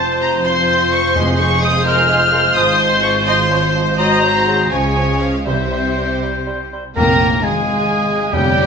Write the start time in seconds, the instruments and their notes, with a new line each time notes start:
Already playing: double bass section F1, cello section F2, bassoon F3, french horn section C4 F4, violin section F4 C5 A5, trumpet C5, oboe C5, viola section C5, flute A5
0.21 flute A#5, violin section A#5
0.45 french horn section C4 F4, trumpet C5, flute C6, violin section C6
0.92 flute C#6, violin section C#6
1.15 timpani F2, bassoon G#3, french horn section G#3 F4, viola section G#4, violin section G#4 C6, oboe C5, trumpet C5, flute C6
1.39 bassoon G#3, oboe C5, violin section C#6, flute C#6
1.62 bassoon G#3, oboe C5, violin section D#6, flute D#6
1.85 bassoon G#3, viola section A#4, oboe C5, violin section F6, flute F6
2.09 bassoon G#3, viola section G#4, oboe C5
2.32 bassoon G#3, viola section A#4, oboe C5
2.55 double bass section G#1, cello section G#2, bassoon F3, violin section F4 C5 D#6, viola section C5, oboe C5, flute D#6
2.79 bassoon F3, oboe C5, violin section C6, flute C6
3.02 bassoon F3, oboe C5, violin section C#6, flute C#6
3.25 bassoon F3, oboe C5, viola section D#5, violin section C6, flute C6
3.50 bassoon F3, oboe C5, viola section C#5
3.74 bassoon F3, viola section C5, oboe C5
3.98 bassoon F#3, french horn section G#3 F#4, violin section F#4 A#5, oboe C5, trumpet C5, viola section D#5, flute A#5
4.22 bassoon F#3, viola section C5, oboe C5
4.47 bassoon F#3, viola section G#4, oboe C5
4.70 double bass section C#2, cello section C#3, bassoon F3, french horn section F4, violin section F4 C#5 G#5, viola section G#4, trumpet C#5, oboe C#5, flute G#5
4.96 bassoon F3, oboe C#5
5.20 bassoon F3, oboe C#5, flute F5, violin section F5
5.45 double bass section C2, cello section C3, timpani C3, bassoon G3, french horn section G3 G4, violin section G4 C5 E5, trumpet C5, viola section C5, oboe C5, flute E5
5.71 bassoon G3, oboe C5
5.97 bassoon G3, oboe C5
6.22 bassoon G3, oboe C5
6.47 bassoon G3, oboe C5
6.73 bassoon G3, oboe C5
6.96 double bass section A#1, timpani F2, viola section A#3, french horn section A#3, cello section A#3, bassoon A#3, violin section A#4 A#5, trumpet A#4, flute G5, oboe A#5
7.42 double bass section G#1, cello section G#3, viola section G#3, french horn section G#3, bassoon G#3, trumpet G#4, violin section G#4 G#5, flute F5, oboe G#5
8.32 double bass section G1, timpani F2, cello section G3, viola section G3, bassoon G3, french horn section G3, trumpet G4, violin section G4 G5, flute C#5, oboe G5